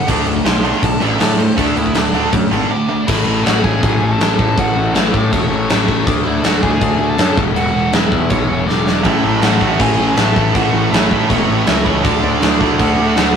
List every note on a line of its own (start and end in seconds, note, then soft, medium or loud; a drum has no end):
0.08 0.22 D2 loud
0.08 0.25 D3 loud
0.08 0.26 A3 loud
0.08 0.27 D4 loud
0.08 kick loud
0.08 crash medium
0.26 0.40 D2 medium
0.26 0.44 D3 medium
0.26 0.44 A3 medium
0.26 crash medium
0.36 kick medium
0.45 0.72 B1 medium
0.45 0.62 D3 medium
0.45 0.63 A3 medium
0.45 0.82 C6 medium
0.45 snare loud
0.45 crash medium
0.63 0.82 D3 medium
0.63 0.82 A3 loud
0.63 0.82 D4 loud
0.63 crash medium
0.83 0.96 B1 loud
0.83 1.00 D3 medium
0.83 1.00 A3 medium
0.83 1.02 A5 loud
0.83 kick loud
0.83 crash medium
1.00 1.14 A1 medium
1.00 1.19 D3 medium
1.00 1.19 A3 medium
1.00 1.20 D4 medium
1.00 1.20 E5 loud
1.00 crash medium
1.20 1.47 A2 loud
1.20 1.37 D3 medium
1.20 1.37 A3 medium
1.20 1.39 D5 medium
1.20 snare loud
1.20 crash medium
1.38 1.56 D3 medium
1.38 1.56 A3 medium
1.38 1.56 D4 medium
1.38 1.57 C5 medium
1.38 crash medium
1.57 1.71 D2 loud
1.57 1.75 D3 loud
1.57 1.75 A3 loud
1.57 1.76 D4 loud
1.57 1.76 A4 medium
1.57 kick loud
1.57 crash medium
1.76 1.90 D2 medium
1.76 1.93 D3 medium
1.76 1.93 A3 medium
1.76 1.95 E4 loud
1.76 crash medium
1.86 kick medium
1.94 2.08 D2 medium
1.94 2.12 D3 medium
1.94 2.12 A3 loud
1.94 2.32 D4 loud
1.94 snare loud
1.94 crash medium
2.13 2.27 D2 medium
2.13 2.31 D3 medium
2.13 2.32 A3 medium
2.13 2.32 D4 loud
2.13 crash medium
2.32 2.46 F#2 loud
2.32 2.49 D3 medium
2.32 2.50 A3 loud
2.32 kick loud
2.32 crash medium
2.51 2.64 G#1 medium
2.51 2.68 D3 medium
2.51 2.69 A3 medium
2.51 2.69 D4 loud
2.51 crash medium
2.69 2.86 D3 medium
2.69 2.87 A3 medium
2.69 3.05 D4 medium
2.69 3.09 D5 loud
2.89 3.05 D3 medium
2.89 3.06 A3 medium
2.89 3.06 D4 medium
3.07 3.25 A1 loud
3.07 3.44 A2 loud
3.07 3.44 E3 loud
3.07 3.45 A3 loud
3.07 3.42 E4 medium
3.07 3.43 E5 loud
3.07 kick loud
3.07 crash loud
3.07 crash medium
3.26 3.44 A1 loud
3.44 3.63 A1 medium
3.44 3.63 A2 medium
3.44 3.63 E3 loud
3.44 3.63 A3 medium
3.44 3.62 F#4 medium
3.44 3.64 F#5 loud
3.44 snare loud
3.44 crash medium
3.63 3.81 A1 medium
3.63 3.80 A2 medium
3.63 3.80 E3 medium
3.63 3.82 A3 loud
3.63 4.06 G#4 medium
3.63 4.12 G#5 loud
3.63 kick medium
3.81 4.00 A1 loud
3.81 4.17 A2 medium
3.81 4.17 E3 loud
3.81 4.18 A3 loud
3.81 kick loud
3.81 crash medium
4.02 4.19 A1 medium
4.11 4.54 A4 medium
4.11 4.59 A5 loud
4.18 4.37 A1 medium
4.18 4.36 A2 medium
4.18 4.36 E3 medium
4.18 4.37 A3 loud
4.18 snare loud
4.18 crash medium
4.37 4.56 A1 loud
4.37 4.54 A2 medium
4.37 4.54 E3 medium
4.37 4.55 A3 loud
4.37 kick loud
4.55 4.75 A1 medium
4.55 4.91 A2 loud
4.55 4.92 E3 loud
4.55 4.93 A3 loud
4.55 4.92 F#4 medium
4.55 4.93 F#5 loud
4.55 kick loud
4.55 crash medium
4.76 4.93 A1 loud
4.93 5.12 A1 loud
4.93 5.11 A2 medium
4.93 5.11 E3 medium
4.93 5.11 A3 loud
4.93 5.11 E4 medium
4.93 5.12 E5 loud
4.93 snare loud
4.93 crash medium
5.12 5.29 A2 medium
5.12 5.31 A2 loud
5.12 5.30 E3 medium
5.12 5.30 A3 loud
5.12 5.30 D4 medium
5.12 5.30 D5 medium
5.12 kick loud
5.31 5.50 E1 loud
5.31 5.67 A2 loud
5.31 5.68 E3 loud
5.31 5.68 A3 loud
5.31 5.66 C#4 medium
5.31 5.68 C#5 loud
5.31 kick loud
5.31 crash medium
5.52 5.68 A1 medium
5.68 6.04 A1 loud
5.68 5.86 A2 medium
5.68 5.86 E3 medium
5.68 5.87 A3 loud
5.68 6.03 C#4 medium
5.68 6.03 C#5 medium
5.68 snare loud
5.68 crash medium
5.88 6.05 A2 medium
5.88 6.05 E3 medium
5.88 6.05 A3 medium
5.88 kick medium
6.06 6.24 D2 medium
6.06 6.42 D3 loud
6.06 6.43 A3 loud
6.06 6.12 D4 medium
6.06 6.43 D4 loud
6.06 6.11 D5 medium
6.06 kick loud
6.06 crash medium
6.25 6.43 D2 medium
6.25 6.42 E4 medium
6.25 6.45 E5 loud
6.43 6.61 D2 medium
6.43 6.62 D3 medium
6.43 6.63 A3 medium
6.43 6.63 D4 medium
6.43 6.61 F#4 medium
6.43 6.63 F#5 medium
6.43 snare loud
6.43 crash medium
6.62 6.80 D2 loud
6.62 6.80 D3 medium
6.62 6.81 A3 loud
6.62 6.81 D4 loud
6.62 7.06 G#4 medium
6.62 7.09 G#5 loud
6.62 kick loud
6.81 6.98 D2 loud
6.81 7.16 D3 loud
6.81 7.16 A3 loud
6.81 7.18 D4 loud
6.81 kick loud
6.81 crash medium
6.99 7.17 D2 medium
7.09 7.35 A4 medium
7.09 7.38 A5 loud
7.17 7.36 F#2 loud
7.17 7.35 D3 medium
7.17 7.35 A3 loud
7.17 7.36 D4 medium
7.17 snare loud
7.17 crash medium
7.36 7.55 E1 medium
7.36 7.54 E2 medium
7.36 7.53 B2 medium
7.36 7.55 E3 loud
7.36 kick loud
7.55 7.73 E1 loud
7.55 7.91 E2 loud
7.55 7.92 B2 loud
7.55 7.93 E3 loud
7.55 7.91 F#4 medium
7.55 7.90 F#5 loud
7.55 crash medium
7.74 7.92 E1 medium
7.92 8.10 E1 medium
7.92 8.09 E2 medium
7.92 8.10 B2 medium
7.92 8.11 E3 medium
7.92 8.29 E4 medium
7.92 8.29 E5 loud
7.92 snare loud
7.92 crash medium
8.10 8.28 E2 medium
8.10 8.29 E2 medium
8.10 8.29 B2 medium
8.10 8.30 E3 medium
8.10 kick loud
8.29 8.48 B1 loud
8.29 8.65 E2 loud
8.29 8.66 B2 loud
8.29 8.67 E3 loud
8.29 8.66 C#4 medium
8.29 8.67 C#5 loud
8.29 kick loud
8.29 crash medium
8.49 8.67 E1 medium
8.67 9.05 E1 loud
8.67 8.84 E2 medium
8.67 8.85 B2 loud
8.67 8.87 E3 medium
8.67 9.03 D4 medium
8.67 9.02 D5 medium
8.67 snare medium
8.85 9.03 E2 medium
8.85 9.03 B2 medium
8.85 9.04 E3 medium
8.85 snare loud
9.04 9.23 A1 loud
9.04 9.41 A2 loud
9.04 9.41 E3 loud
9.04 9.42 A3 loud
9.04 9.22 E4 medium
9.04 9.22 E5 loud
9.04 kick loud
9.04 crash medium
9.23 9.41 A1 loud
9.23 9.41 E4 medium
9.23 9.43 E5 loud
9.41 9.60 A1 loud
9.41 9.61 A2 medium
9.41 9.61 E3 medium
9.41 9.62 A3 loud
9.41 9.78 F#4 medium
9.41 9.78 F#5 loud
9.41 snare loud
9.41 crash medium
9.61 9.79 A1 loud
9.61 9.79 A2 medium
9.61 9.79 E3 loud
9.61 9.80 A3 loud
9.61 kick medium
9.79 9.98 A1 loud
9.79 10.16 A2 loud
9.79 10.17 E3 loud
9.79 10.18 A3 loud
9.79 10.06 G#4 medium
9.79 10.07 G#5 loud
9.79 kick loud
9.79 crash medium
9.98 10.16 A1 medium
10.07 10.51 A4 medium
10.07 10.18 G#5 loud
10.17 10.35 A1 loud
10.17 10.34 A2 medium
10.17 10.34 E3 medium
10.17 10.36 A3 loud
10.17 10.56 A5 loud
10.17 snare loud
10.17 crash medium
10.35 10.54 A1 medium
10.35 10.53 A2 medium
10.35 10.53 E3 medium
10.35 10.54 A3 medium
10.35 kick loud
10.54 10.72 A1 medium
10.54 10.91 A2 loud
10.54 10.91 E3 loud
10.54 10.92 A3 loud
10.54 10.89 F#4 medium
10.54 10.90 F#5 loud
10.54 kick loud
10.54 crash medium
10.73 10.91 A1 medium
10.90 11.09 A1 loud
10.90 11.10 A2 medium
10.90 11.10 E3 medium
10.90 11.11 A3 loud
10.90 11.26 E4 medium
10.90 11.30 E5 medium
10.90 snare loud
10.90 crash medium
11.11 11.28 A2 medium
11.11 11.29 A2 medium
11.11 11.29 E3 medium
11.11 11.29 A3 loud
11.11 kick medium
11.29 11.47 E1 loud
11.29 11.66 A2 loud
11.29 11.67 E3 loud
11.29 11.67 A3 loud
11.29 11.64 C#4 medium
11.29 11.64 C#5 loud
11.29 kick loud
11.29 crash medium
11.48 11.66 A1 medium
11.66 12.05 C#2 loud
11.66 11.85 A2 medium
11.66 11.86 E3 medium
11.66 11.86 A3 loud
11.66 12.01 C#4 medium
11.66 12.01 C#5 medium
11.66 snare loud
11.66 crash medium
11.86 12.03 A2 medium
11.86 12.04 E3 medium
11.86 12.04 A3 medium
11.86 kick medium
12.03 12.22 D2 loud
12.03 12.41 D3 loud
12.03 12.42 A3 loud
12.03 12.21 D4 medium
12.03 12.42 D4 loud
12.03 12.23 D5 medium
12.03 kick loud
12.03 crash medium
12.24 12.41 D2 loud
12.24 12.41 D4 medium
12.24 12.42 D5 medium
12.42 12.59 D2 loud
12.42 12.59 D3 medium
12.42 12.59 A3 medium
12.42 12.60 D4 loud
12.42 12.77 E4 medium
12.42 12.77 E5 medium
12.42 snare loud
12.42 crash medium
12.60 12.78 D2 loud
12.60 12.78 D3 loud
12.60 12.78 A3 loud
12.60 12.78 D4 medium
12.60 kick loud
12.79 12.97 D2 loud
12.79 13.15 D3 loud
12.79 13.15 A3 loud
12.79 13.16 D4 loud
12.79 13.06 F#4 medium
12.79 13.05 F#5 loud
12.79 kick loud
12.79 crash medium
12.98 13.15 D2 loud
13.07 13.36 F#4 medium
13.07 13.36 F#5 medium
13.16 13.34 D2 loud
13.16 13.34 D3 medium
13.16 13.34 A3 loud
13.16 13.34 D4 medium
13.16 snare loud
13.16 crash medium